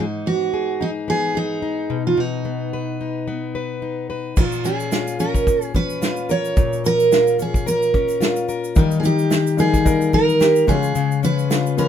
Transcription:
0.00 steel-string acoustic guitar G#2 D#4
0.26 steel-string acoustic guitar B3 F#4
0.54 steel-string acoustic guitar G#4
0.81 steel-string acoustic guitar D#4
1.08 steel-string acoustic guitar B3 G#4
1.35 steel-string acoustic guitar D#4 G#4
1.62 steel-string acoustic guitar D#4
1.90 steel-string acoustic guitar B2
2.07 steel-string acoustic guitar F4
2.17 steel-string acoustic guitar B2 D#4
2.45 steel-string acoustic guitar B3
2.73 steel-string acoustic guitar B4
3.01 steel-string acoustic guitar D#4
3.27 steel-string acoustic guitar B3
3.55 steel-string acoustic guitar B4
3.82 steel-string acoustic guitar D#4
4.10 steel-string acoustic guitar B4
4.36 steel-string acoustic guitar A#2 F4, kick, crash, shaker
4.52 shaker
4.64 steel-string acoustic guitar C#4 G#4, shaker
4.80 shaker
4.92 steel-string acoustic guitar F4, snare, shaker
5.07 shaker
5.19 steel-string acoustic guitar C#4 A#4, shaker
5.35 kick, shaker
5.47 kick, shaker
5.62 steel-string acoustic guitar G#4, shaker
5.75 steel-string acoustic guitar C#4 B4, kick, shaker
5.90 shaker
6.02 steel-string acoustic guitar F4, snare, shaker
6.16 shaker
6.29 steel-string acoustic guitar A#4 C#5, shaker
6.44 shaker
6.57 steel-string acoustic guitar A#2, kick, shaker
6.73 shaker
6.84 steel-string acoustic guitar C#4 A#4, shaker
7.00 shaker
7.12 steel-string acoustic guitar F4, snare, shaker
7.27 shaker
7.39 steel-string acoustic guitar C#4 G#4, shaker
7.54 kick, shaker
7.66 steel-string acoustic guitar A#4, shaker
7.82 shaker
7.94 steel-string acoustic guitar C#4, kick, shaker
8.08 shaker
8.10 shaker
8.21 steel-string acoustic guitar F4, snare, shaker
8.36 shaker
8.48 steel-string acoustic guitar A#4, shaker
8.64 shaker
8.75 steel-string acoustic guitar D#3 D#4, upright piano G3 A#3 D#4 A#4, kick, shaker
8.91 shaker
9.00 steel-string acoustic guitar D#4 G#4, shaker
9.04 steel-string acoustic guitar G4, shaker
9.19 shaker
9.30 snare, shaker
9.47 shaker
9.57 upright piano G3 A#3 D#4 A#4, steel-string acoustic guitar D#4 G#4, shaker
9.74 kick, snare, shaker
9.85 upright piano G3 A#3 D#4 A#4, steel-string acoustic guitar A#4, kick, shaker
10.01 shaker
10.13 steel-string acoustic guitar D#4 A#4, kick, shaker
10.29 shaker
10.40 steel-string acoustic guitar G4, snare, shaker
10.42 shaker
10.56 shaker
10.67 steel-string acoustic guitar C#3 G#4, upright piano G#3 C#4 E4 C#5, kick, shaker
10.69 shaker
10.75 upright piano F4
10.83 shaker
10.95 steel-string acoustic guitar C#3, shaker
11.12 shaker
11.23 steel-string acoustic guitar C#4 B4, shaker
11.39 shaker
11.50 steel-string acoustic guitar F4, snare, shaker
11.66 shaker
11.77 upright piano G#3 C#4 F4 B4, steel-string acoustic guitar C#4 A#4, shaker

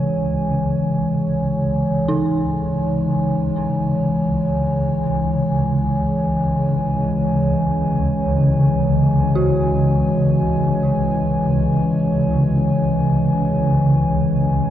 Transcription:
Already playing: synth drone C#2 C#3, analog synth pad E3 G#3 C#5 G#5
2.08 synth bell D#4
9.35 synth bell F#4

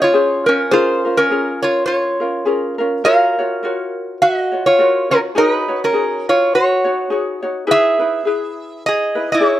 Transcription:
Already playing: ukulele C#4 F4 G#4 C5
0.02 resonator guitar played with a steel bar F4 C#5
0.13 ukulele C#4 F4 G#4 C5
0.46 ukulele C#4 F4 C5, resonator guitar played with a steel bar C#4 A#4
0.71 ukulele C#4 F4 G#4 A#4, resonator guitar played with a steel bar F4 C5
1.05 ukulele C#4 F4 A#4
1.17 resonator guitar played with a steel bar C#4 A#4
1.30 ukulele C#4 F4 G#4 A#4
1.62 resonator guitar played with a steel bar F4 C#5
1.86 resonator guitar played with a steel bar F4 C#5
2.20 ukulele C#4 F4 A#4
2.45 ukulele C#4 F4 G#4 A#4
2.78 ukulele C#4 F4 A#4
3.04 ukulele F4 F#4 A#4 C#5, resonator guitar played with a steel bar A#4 F5
3.39 ukulele F4 F#4 C#5
3.63 ukulele F4 F#4 A#4 C#5
4.22 resonator guitar played with a steel bar F#4 D#5
4.52 ukulele F4 F#4 C#5
4.66 resonator guitar played with a steel bar F4 C#5
4.79 ukulele F4 F#4 A#4 C#5
5.10 resonator guitar played with a steel bar C#4 A#4, ukulele F4 F#4 C#5
5.35 ukulele D#4 F#4 G#4 C#5, resonator guitar played with a steel bar D#4 A#4
5.49 resonator guitar played with a steel bar B4
5.68 ukulele D#4 F#4 C#5
5.84 resonator guitar played with a steel bar C#4 A#4
5.93 ukulele D#4 F#4 G#4 C#5
6.29 resonator guitar played with a steel bar F4 C#5
6.55 resonator guitar played with a steel bar F#4 C#5
6.84 ukulele D#4 F#4 C#5
7.10 ukulele D#4 F#4 G#4 C#5
7.42 ukulele D#4 F#4 C#5
7.67 ukulele D#4 E4 G#4 B4
7.71 resonator guitar played with a steel bar G#4 E5
7.99 ukulele D#4 E4 B4
8.25 ukulele E4 G#4 B4
8.86 resonator guitar played with a steel bar G#4 D#5
9.15 ukulele D#4 E4 B4
9.32 resonator guitar played with a steel bar E4 C#5
9.40 ukulele D#4 E4 G#4 B4

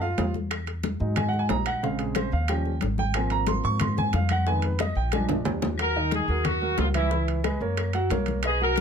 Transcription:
Already playing: upright bass F#2
0.01 grand piano F4 F5, high bongo, high conga
0.18 upright bass E2, high bongo, low bongo, high conga, high timbale, low timbale
0.34 high bongo, high conga
0.51 high bongo, high conga, high timbale, claves
0.67 high bongo, high conga, high timbale
0.83 high bongo, high conga, high timbale
1.00 upright bass G#2, grand piano F#3 G#3 D#4, high conga
1.16 grand piano G#5, high bongo, high conga, low conga, high timbale, claves
1.29 grand piano F#5
1.33 high bongo, high conga
1.39 grand piano G#5
1.49 upright bass A#1, grand piano A#5, high bongo, low bongo, high conga, high timbale, low timbale
1.66 grand piano F#5, high bongo, high timbale, claves
1.83 grand piano C#3 G#3 C4 F5, high bongo, high conga
1.99 grand piano G#4, high bongo, high conga, high timbale
2.15 grand piano C5, high bongo, high conga, high timbale, claves
2.32 upright bass D#2, grand piano F5, high conga
2.48 grand piano F3 G3 C#4 G5, high bongo, high conga, high timbale, claves
2.65 high bongo, high conga
2.81 upright bass G#1, high bongo, low bongo, high conga, high timbale
2.98 grand piano G5, high bongo, high conga
3.14 grand piano F3 A#3 C4 G#5, high bongo, high conga, high timbale, claves
3.30 grand piano A#5, high bongo, high conga, high timbale
3.47 grand piano C6, high bongo, high conga, high timbale
3.64 upright bass G#2, grand piano C#6, high conga
3.80 grand piano C6, high bongo, high conga, low conga, high timbale, claves
3.97 grand piano G#5, high bongo, high conga, low conga
4.13 upright bass F2, grand piano F5, high bongo, low bongo, high conga, high timbale
4.29 grand piano F#5, high bongo, high conga, high timbale, claves
4.47 grand piano D#3 G#3 B3 G#5, high bongo, high conga
4.62 grand piano B4, high bongo, high conga, high timbale
4.79 grand piano D#5, high bongo, high conga, high timbale, claves
4.95 upright bass A#1, grand piano G5, high conga
5.12 grand piano F3 G#3 D4 G#5, high bongo, high conga, high timbale, claves
5.29 low bongo, low conga, high timbale
5.45 upright bass D#2, low bongo, low conga, low timbale
5.62 low bongo, low conga, low timbale
5.78 grand piano F#3 F#4 A#4, horn section A#4, high bongo, high conga, high timbale, claves
5.96 grand piano D#3 D#4 D#5, high bongo, high conga
6.11 horn section G#4, high bongo, high conga, high timbale
6.28 upright bass D#2, grand piano F#3 F#4 A#4, high bongo, high conga
6.44 horn section F#4, high bongo, high conga, low conga, high timbale, claves
6.62 grand piano F#3 F#4 A#4, high conga
6.78 upright bass C#2, horn section F4, high bongo, low bongo, high conga, high timbale, low timbale
6.94 grand piano E3 E4 E5, horn section E4, high bongo, high conga, high timbale, claves
7.11 grand piano E3 E4, high bongo, high conga
7.28 high conga, high timbale
7.44 grand piano G#3 G#4 B4, high bongo, high conga, high timbale, claves
7.61 upright bass F#2, grand piano A#3 A#4 C#5, high bongo, high conga
7.77 high bongo, high conga, high timbale, claves
7.93 grand piano F#3 F#4 F#5, high bongo, high conga, high timbale
8.10 upright bass B1, grand piano A#3 A#4 C#5, high bongo, low bongo, high conga, high timbale
8.26 high bongo, high conga, high timbale
8.43 grand piano B3 B4 D#5, horn section G#4, high bongo, high conga, high timbale, claves
8.61 grand piano F#3 F#4 F#5, horn section A#4, high bongo, high conga
8.76 high bongo, high conga, high timbale

